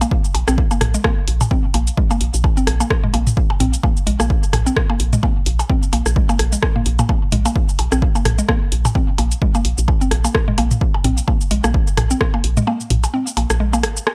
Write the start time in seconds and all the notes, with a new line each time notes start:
0.01 A#3, closed hi-hat, cabasa, percussion blips
0.11 kick
0.25 cabasa
0.34 A#1, closed hi-hat, percussion blips
0.48 A#1 C4, cross-stick, cabasa
0.58 kick
0.71 A#3, cabasa, percussion blips
0.81 A#1, cross-stick, closed hi-hat, mid tom
0.94 G#3, cabasa
1.04 A#3, kick, cross-stick, percussion blips
1.28 A#1, closed hi-hat
1.41 mid tom, cabasa, percussion blips
1.51 C4, kick
1.74 A#1 A#3, closed hi-hat, percussion blips
1.87 closed hi-hat, cabasa
1.97 G#3, kick
2.11 A#3, cabasa, percussion blips
2.21 A#1, closed hi-hat
2.34 A#1, cabasa
2.44 kick, percussion blips
2.57 C4, cabasa
2.67 A#1, cross-stick, closed hi-hat
2.80 A#3, cabasa, percussion blips
2.90 kick, cross-stick
3.04 G#3, mid tom
3.14 A#1 A#3, closed hi-hat, percussion blips
3.27 mid tom, cabasa
3.37 kick
3.50 percussion blips
3.60 A#1 C4, closed hi-hat, mid tom
3.74 closed hi-hat, cabasa
3.83 A#3, kick, percussion blips
3.97 cabasa
4.07 A#1 G#3, closed hi-hat
4.20 A#1 A#3, cross-stick, cabasa, percussion blips
4.30 kick
4.43 cabasa
4.53 A#1, cross-stick, closed hi-hat, mid tom, percussion blips
4.66 C4, cabasa
4.77 kick, cross-stick
4.90 A#3, percussion blips
5.00 A#1, closed hi-hat
5.13 G#3, mid tom, cabasa
5.23 A#3, kick, percussion blips
5.46 A#1, closed hi-hat
5.59 closed hi-hat, cabasa, percussion blips
5.69 C4, kick
5.83 cabasa
5.93 A#1 A#3, closed hi-hat, percussion blips
6.06 A#1, cross-stick, cabasa
6.16 G#3, kick
6.29 A#3, cabasa, percussion blips
6.39 A#1, cross-stick, closed hi-hat
6.52 G#3, cabasa
6.63 kick, cross-stick, percussion blips
6.76 A#3, mid tom
6.86 A#1, closed hi-hat
6.99 A#3, mid tom, cabasa, percussion blips
7.09 A#3, kick, percussion blips
7.32 A#1 G#3, closed hi-hat, mid tom
7.45 A#3, closed hi-hat, cabasa, percussion blips
7.56 kick
7.69 cabasa
7.79 A#1, closed hi-hat, percussion blips
7.92 A#1 C4, cross-stick, cabasa
8.02 kick
8.15 A#3, cabasa, percussion blips
8.25 A#1, cross-stick, closed hi-hat, mid tom
8.39 G#3, cabasa
8.49 A#3, kick, cross-stick, percussion blips
8.72 A#1, closed hi-hat
8.85 mid tom, cabasa, percussion blips
8.95 C4, kick
9.18 A#1 A#3, closed hi-hat, percussion blips
9.32 closed hi-hat, cabasa
9.42 G#3, kick
9.55 A#3, cabasa, percussion blips
9.65 A#1, closed hi-hat
9.78 A#1, cabasa
9.88 kick, percussion blips
10.01 C4, cabasa
10.11 A#1, cross-stick, closed hi-hat
10.24 A#3, cabasa, percussion blips
10.35 kick, cross-stick
10.48 G#3, mid tom
10.58 A#1 A#3, closed hi-hat, percussion blips
10.71 mid tom, cabasa
10.81 kick
10.94 percussion blips
11.04 A#1 C4, closed hi-hat, mid tom
11.18 closed hi-hat, cabasa
11.28 A#3, kick, percussion blips
11.41 cabasa
11.51 A#1 G#3, closed hi-hat
11.64 A#1 A#3, cross-stick, cabasa, percussion blips
11.74 kick
11.87 cabasa
11.97 A#1, cross-stick, closed hi-hat, mid tom, percussion blips
12.11 C4, cabasa
12.21 kick, cross-stick
12.34 A#3, percussion blips
12.44 A#1, closed hi-hat
12.57 G#3, mid tom, cabasa
12.67 A#3, percussion blips
12.80 cabasa
12.90 A#1, closed hi-hat, mid tom
13.04 closed hi-hat, cabasa, percussion blips
13.14 C4
13.27 cabasa
13.37 A#1 A#3, closed hi-hat, percussion blips
13.50 A#1, cross-stick, closed hi-hat, cabasa
13.60 G#3
13.73 A#3, cabasa, percussion blips
13.83 G#1, cross-stick, closed hi-hat
13.97 cabasa
14.07 cross-stick, percussion blips